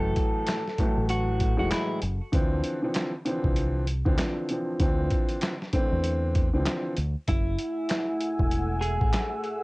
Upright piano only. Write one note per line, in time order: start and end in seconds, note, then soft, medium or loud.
0.00 0.59 A2 loud
0.00 0.59 E3 medium
0.00 0.59 F#3 medium
0.00 0.60 A3 loud
0.80 1.52 A2 loud
0.80 1.52 E3 medium
0.80 1.52 F#3 medium
0.80 1.52 A3 loud
1.57 1.98 A2 loud
1.57 1.98 E3 medium
1.57 1.98 F#3 medium
1.57 1.98 G#3 loud
2.32 2.77 D3 loud
2.32 2.78 E3 medium
2.32 2.78 F3 medium
2.32 2.78 C4 loud
2.82 3.10 D3 medium
2.82 3.10 E3 medium
2.82 3.10 F3 medium
2.82 3.11 C4 medium
3.25 3.83 D3 loud
3.25 3.83 E3 medium
3.25 3.83 F3 medium
3.25 3.84 C4 loud
4.05 4.17 D3 loud
4.05 4.17 E3 medium
4.05 4.17 F3 medium
4.05 4.17 C4 loud
4.18 4.47 D3 medium
4.18 4.47 E3 medium
4.18 4.48 F3 medium
4.18 4.48 C4 medium
4.50 4.78 D3 medium
4.50 4.79 E3 medium
4.50 4.79 F3 medium
4.50 4.79 C4 medium
4.80 5.53 D3 loud
4.80 5.53 E3 medium
4.80 5.53 F3 medium
4.80 5.53 C4 loud
5.73 6.46 D3 medium
5.73 6.46 E3 medium
5.73 6.46 A3 medium
5.73 6.46 C4 loud
6.53 6.94 D3 medium
6.53 6.94 E3 medium
6.53 6.94 F3 medium
6.53 6.94 C4 loud